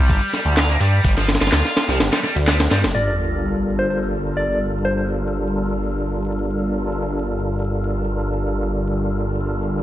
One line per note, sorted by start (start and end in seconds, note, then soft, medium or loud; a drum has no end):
0.00 0.11 C2 loud
0.00 0.32 G3 medium
0.09 0.20 G1 medium
0.09 kick loud
0.09 ride medium
0.33 0.56 G3 medium
0.33 snare soft
0.33 ride medium
0.45 0.77 D2 medium
0.57 0.68 F4 medium
0.57 snare loud
0.57 clap loud
0.57 ride medium
0.70 0.80 A#3 medium
0.80 1.00 G2 medium
0.80 1.03 G3 medium
0.80 open hi-hat medium
1.04 1.37 G1 loud
1.04 1.10 G3 medium
1.04 kick loud
1.04 ride medium
1.17 1.28 F3 medium
1.17 snare soft
1.28 snare medium
1.28 ride medium
1.35 snare medium
1.35 ride medium
1.41 1.50 G1 medium
1.41 1.51 F4 medium
1.41 snare medium
1.41 ride medium
1.47 snare medium
1.47 ride medium
1.52 1.63 D2 medium
1.52 1.87 F4 medium
1.52 snare loud
1.52 clap loud
1.52 ride medium
1.65 snare soft
1.77 snare loud
1.77 ride medium
1.88 2.01 C2 loud
1.88 1.97 F3 medium
1.88 snare soft
2.00 2.10 G1 medium
2.00 snare loud
2.00 ride medium
2.12 2.18 G3 medium
2.12 snare loud
2.12 ride medium
2.24 2.34 G3 medium
2.24 snare soft
2.36 2.68 D2 medium
2.36 ride medium
2.47 2.57 G3 medium
2.47 snare loud
2.47 clap loud
2.47 ride medium
2.60 snare loud
2.60 ride medium
2.71 2.86 G2 medium
2.71 2.81 G3 loud
2.71 snare loud
2.71 ride medium
2.84 2.93 F1 medium
2.84 snare loud
2.84 ride medium
2.94 9.83 G1 medium
2.94 9.83 G3 medium
2.94 9.83 D4 medium
2.94 9.83 F4 medium
2.94 9.83 A4 medium
2.94 9.83 A#4 medium
2.94 3.03 D5 medium
2.94 sub drop medium
3.07 3.15 D5 medium
3.79 3.86 C5 medium
3.90 3.98 C5 medium
4.37 4.59 D5 medium
4.85 4.93 C5 medium
4.98 5.05 C5 medium